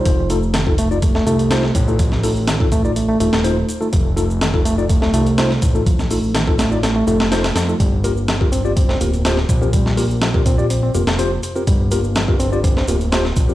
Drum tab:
HH |x-x-x-x-x-xxx-x-|x-o-x-x-x-x-x-x-|x-x-x-x-x-xxx-x-|x-o-x-x-x-x-xxx-|
SH |x-xxx-xxx-xxx-xx|x-xxx-xxx-xxx-xx|x-xxx-xxx-xxx-xx|xxxxx-xxx-xxxxxx|
SD |----o----o--oo--|-o--o------o----|----o----o--oo--|-o--o-o-o--oooo-|
BD |o----o--o-----o-|o----oo---------|o----o--o-----o-|o----o----------|

HH |x-x-x-x-x-xxx-x-|x-o-x-x-x-x-x-x-|x-x-x-x-x-xxx-x-|
SH |x-xxx-xxx-xxx-xx|x-xxx-xxx-xxx-xx|x-xxx-xxx-xxx-xx|
SD |----o----o--oo--|-o--o------o----|----o----o--oo--|
BD |o----o--o-----o-|o----oo---------|o----o--o-----o-|